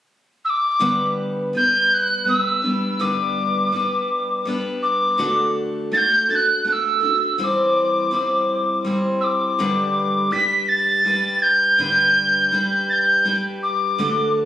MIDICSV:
0, 0, Header, 1, 3, 480
1, 0, Start_track
1, 0, Key_signature, 1, "major"
1, 0, Tempo, 733496
1, 520, Time_signature, 3, 2, 24, 8
1, 9457, End_track
2, 0, Start_track
2, 0, Title_t, "Tin whistle"
2, 0, Program_c, 0, 75
2, 291, Note_on_c, 0, 88, 83
2, 322, Note_on_c, 0, 86, 90
2, 329, Note_off_c, 0, 88, 0
2, 739, Note_off_c, 0, 86, 0
2, 1025, Note_on_c, 0, 91, 90
2, 1267, Note_on_c, 0, 90, 85
2, 1277, Note_off_c, 0, 91, 0
2, 1491, Note_off_c, 0, 90, 0
2, 1495, Note_on_c, 0, 88, 84
2, 1967, Note_on_c, 0, 86, 73
2, 1977, Note_off_c, 0, 88, 0
2, 2920, Note_off_c, 0, 86, 0
2, 3157, Note_on_c, 0, 86, 92
2, 3609, Note_off_c, 0, 86, 0
2, 3879, Note_on_c, 0, 93, 86
2, 3906, Note_on_c, 0, 91, 94
2, 3912, Note_off_c, 0, 93, 0
2, 4123, Note_on_c, 0, 93, 77
2, 4132, Note_off_c, 0, 91, 0
2, 4154, Note_on_c, 0, 90, 84
2, 4160, Note_off_c, 0, 93, 0
2, 4358, Note_off_c, 0, 90, 0
2, 4368, Note_on_c, 0, 90, 84
2, 4397, Note_on_c, 0, 88, 91
2, 4404, Note_off_c, 0, 90, 0
2, 4839, Note_off_c, 0, 88, 0
2, 4839, Note_on_c, 0, 88, 76
2, 4867, Note_on_c, 0, 86, 82
2, 4873, Note_off_c, 0, 88, 0
2, 5795, Note_off_c, 0, 86, 0
2, 6023, Note_on_c, 0, 88, 75
2, 6045, Note_on_c, 0, 86, 81
2, 6051, Note_off_c, 0, 88, 0
2, 6752, Note_on_c, 0, 95, 86
2, 6762, Note_off_c, 0, 86, 0
2, 6991, Note_on_c, 0, 93, 89
2, 7000, Note_off_c, 0, 95, 0
2, 7473, Note_on_c, 0, 91, 94
2, 7483, Note_off_c, 0, 93, 0
2, 8432, Note_off_c, 0, 91, 0
2, 8436, Note_on_c, 0, 93, 71
2, 8458, Note_on_c, 0, 91, 77
2, 8465, Note_off_c, 0, 93, 0
2, 8717, Note_off_c, 0, 91, 0
2, 8917, Note_on_c, 0, 86, 67
2, 9371, Note_off_c, 0, 86, 0
2, 9457, End_track
3, 0, Start_track
3, 0, Title_t, "Steel-string acoustic guitar"
3, 0, Program_c, 1, 25
3, 520, Note_on_c, 1, 43, 76
3, 526, Note_on_c, 1, 50, 78
3, 528, Note_on_c, 1, 55, 82
3, 531, Note_on_c, 1, 62, 82
3, 533, Note_on_c, 1, 59, 75
3, 536, Note_on_c, 1, 71, 84
3, 993, Note_off_c, 1, 55, 0
3, 1000, Note_off_c, 1, 43, 0
3, 1001, Note_on_c, 1, 55, 49
3, 1002, Note_off_c, 1, 50, 0
3, 1003, Note_off_c, 1, 59, 0
3, 1007, Note_off_c, 1, 71, 0
3, 1011, Note_on_c, 1, 59, 55
3, 1014, Note_off_c, 1, 62, 0
3, 1016, Note_on_c, 1, 62, 52
3, 1024, Note_on_c, 1, 71, 54
3, 1465, Note_off_c, 1, 55, 0
3, 1472, Note_off_c, 1, 59, 0
3, 1473, Note_on_c, 1, 55, 51
3, 1480, Note_on_c, 1, 59, 50
3, 1484, Note_off_c, 1, 71, 0
3, 1486, Note_off_c, 1, 62, 0
3, 1488, Note_on_c, 1, 62, 52
3, 1492, Note_on_c, 1, 71, 56
3, 1707, Note_off_c, 1, 71, 0
3, 1715, Note_off_c, 1, 55, 0
3, 1715, Note_on_c, 1, 71, 40
3, 1717, Note_off_c, 1, 62, 0
3, 1719, Note_off_c, 1, 59, 0
3, 1725, Note_on_c, 1, 62, 38
3, 1729, Note_on_c, 1, 59, 37
3, 1736, Note_on_c, 1, 55, 35
3, 1956, Note_off_c, 1, 71, 0
3, 1957, Note_off_c, 1, 55, 0
3, 1958, Note_off_c, 1, 59, 0
3, 1959, Note_on_c, 1, 43, 68
3, 1960, Note_on_c, 1, 50, 65
3, 1961, Note_off_c, 1, 62, 0
3, 1965, Note_on_c, 1, 55, 70
3, 1966, Note_on_c, 1, 59, 70
3, 1968, Note_on_c, 1, 62, 71
3, 1972, Note_on_c, 1, 71, 67
3, 2426, Note_off_c, 1, 55, 0
3, 2434, Note_off_c, 1, 59, 0
3, 2434, Note_on_c, 1, 55, 51
3, 2438, Note_off_c, 1, 43, 0
3, 2438, Note_off_c, 1, 50, 0
3, 2442, Note_on_c, 1, 59, 50
3, 2444, Note_off_c, 1, 71, 0
3, 2448, Note_off_c, 1, 62, 0
3, 2450, Note_on_c, 1, 62, 53
3, 2458, Note_on_c, 1, 71, 58
3, 2906, Note_off_c, 1, 55, 0
3, 2914, Note_on_c, 1, 55, 52
3, 2917, Note_off_c, 1, 59, 0
3, 2923, Note_off_c, 1, 62, 0
3, 2924, Note_on_c, 1, 59, 59
3, 2927, Note_off_c, 1, 71, 0
3, 2930, Note_on_c, 1, 62, 54
3, 2935, Note_on_c, 1, 71, 59
3, 3389, Note_on_c, 1, 50, 71
3, 3393, Note_off_c, 1, 55, 0
3, 3393, Note_off_c, 1, 62, 0
3, 3395, Note_on_c, 1, 57, 74
3, 3398, Note_off_c, 1, 59, 0
3, 3399, Note_on_c, 1, 66, 74
3, 3400, Note_on_c, 1, 62, 71
3, 3402, Note_off_c, 1, 71, 0
3, 3405, Note_on_c, 1, 69, 68
3, 3863, Note_off_c, 1, 57, 0
3, 3871, Note_off_c, 1, 50, 0
3, 3871, Note_on_c, 1, 57, 46
3, 3873, Note_off_c, 1, 62, 0
3, 3876, Note_off_c, 1, 66, 0
3, 3879, Note_off_c, 1, 69, 0
3, 3881, Note_on_c, 1, 62, 54
3, 3889, Note_on_c, 1, 66, 53
3, 3892, Note_on_c, 1, 69, 59
3, 4108, Note_off_c, 1, 69, 0
3, 4112, Note_off_c, 1, 57, 0
3, 4116, Note_on_c, 1, 69, 42
3, 4117, Note_off_c, 1, 62, 0
3, 4118, Note_off_c, 1, 66, 0
3, 4126, Note_on_c, 1, 66, 41
3, 4135, Note_on_c, 1, 62, 38
3, 4347, Note_off_c, 1, 62, 0
3, 4348, Note_on_c, 1, 57, 51
3, 4355, Note_off_c, 1, 66, 0
3, 4355, Note_off_c, 1, 69, 0
3, 4355, Note_on_c, 1, 62, 52
3, 4363, Note_on_c, 1, 66, 54
3, 4370, Note_on_c, 1, 69, 57
3, 4578, Note_off_c, 1, 69, 0
3, 4586, Note_on_c, 1, 69, 41
3, 4591, Note_off_c, 1, 57, 0
3, 4591, Note_off_c, 1, 66, 0
3, 4594, Note_off_c, 1, 62, 0
3, 4599, Note_on_c, 1, 66, 40
3, 4606, Note_on_c, 1, 62, 38
3, 4829, Note_off_c, 1, 69, 0
3, 4830, Note_on_c, 1, 52, 64
3, 4834, Note_on_c, 1, 55, 65
3, 4835, Note_off_c, 1, 62, 0
3, 4836, Note_off_c, 1, 66, 0
3, 4837, Note_on_c, 1, 60, 67
3, 4839, Note_on_c, 1, 64, 68
3, 4841, Note_on_c, 1, 72, 67
3, 5304, Note_off_c, 1, 55, 0
3, 5307, Note_off_c, 1, 60, 0
3, 5307, Note_on_c, 1, 55, 51
3, 5311, Note_off_c, 1, 52, 0
3, 5315, Note_on_c, 1, 60, 54
3, 5316, Note_off_c, 1, 64, 0
3, 5317, Note_off_c, 1, 72, 0
3, 5322, Note_on_c, 1, 64, 57
3, 5328, Note_on_c, 1, 72, 52
3, 5786, Note_off_c, 1, 55, 0
3, 5788, Note_on_c, 1, 55, 53
3, 5789, Note_off_c, 1, 60, 0
3, 5794, Note_off_c, 1, 64, 0
3, 5797, Note_on_c, 1, 60, 57
3, 5800, Note_off_c, 1, 72, 0
3, 5802, Note_on_c, 1, 64, 56
3, 5808, Note_on_c, 1, 72, 57
3, 6273, Note_on_c, 1, 43, 69
3, 6274, Note_off_c, 1, 60, 0
3, 6277, Note_off_c, 1, 64, 0
3, 6279, Note_off_c, 1, 55, 0
3, 6279, Note_on_c, 1, 50, 69
3, 6280, Note_off_c, 1, 72, 0
3, 6281, Note_on_c, 1, 55, 70
3, 6282, Note_on_c, 1, 62, 73
3, 6284, Note_on_c, 1, 67, 66
3, 6287, Note_on_c, 1, 71, 74
3, 6738, Note_off_c, 1, 55, 0
3, 6746, Note_on_c, 1, 55, 47
3, 6752, Note_off_c, 1, 62, 0
3, 6753, Note_off_c, 1, 43, 0
3, 6753, Note_off_c, 1, 67, 0
3, 6755, Note_on_c, 1, 62, 51
3, 6756, Note_off_c, 1, 50, 0
3, 6760, Note_off_c, 1, 71, 0
3, 6761, Note_on_c, 1, 67, 58
3, 6767, Note_on_c, 1, 71, 53
3, 7219, Note_off_c, 1, 55, 0
3, 7227, Note_on_c, 1, 55, 49
3, 7233, Note_off_c, 1, 62, 0
3, 7234, Note_off_c, 1, 67, 0
3, 7236, Note_on_c, 1, 62, 49
3, 7240, Note_off_c, 1, 71, 0
3, 7242, Note_on_c, 1, 67, 58
3, 7248, Note_on_c, 1, 71, 62
3, 7706, Note_off_c, 1, 55, 0
3, 7708, Note_on_c, 1, 43, 65
3, 7711, Note_off_c, 1, 67, 0
3, 7711, Note_on_c, 1, 50, 63
3, 7714, Note_on_c, 1, 55, 68
3, 7715, Note_off_c, 1, 62, 0
3, 7716, Note_off_c, 1, 71, 0
3, 7718, Note_on_c, 1, 62, 65
3, 7718, Note_on_c, 1, 67, 75
3, 7723, Note_on_c, 1, 71, 69
3, 8182, Note_off_c, 1, 55, 0
3, 8190, Note_on_c, 1, 55, 57
3, 8191, Note_off_c, 1, 43, 0
3, 8193, Note_off_c, 1, 50, 0
3, 8193, Note_off_c, 1, 62, 0
3, 8196, Note_off_c, 1, 67, 0
3, 8196, Note_on_c, 1, 62, 61
3, 8199, Note_off_c, 1, 71, 0
3, 8204, Note_on_c, 1, 67, 60
3, 8208, Note_on_c, 1, 71, 71
3, 8659, Note_off_c, 1, 55, 0
3, 8667, Note_on_c, 1, 55, 52
3, 8672, Note_off_c, 1, 62, 0
3, 8673, Note_off_c, 1, 67, 0
3, 8674, Note_on_c, 1, 62, 60
3, 8677, Note_off_c, 1, 71, 0
3, 8681, Note_on_c, 1, 67, 53
3, 8685, Note_on_c, 1, 71, 63
3, 9151, Note_on_c, 1, 50, 68
3, 9152, Note_off_c, 1, 55, 0
3, 9156, Note_on_c, 1, 57, 72
3, 9157, Note_off_c, 1, 62, 0
3, 9159, Note_off_c, 1, 67, 0
3, 9159, Note_on_c, 1, 62, 67
3, 9161, Note_off_c, 1, 71, 0
3, 9162, Note_on_c, 1, 66, 74
3, 9166, Note_on_c, 1, 69, 73
3, 9457, Note_off_c, 1, 50, 0
3, 9457, Note_off_c, 1, 57, 0
3, 9457, Note_off_c, 1, 62, 0
3, 9457, Note_off_c, 1, 66, 0
3, 9457, Note_off_c, 1, 69, 0
3, 9457, End_track
0, 0, End_of_file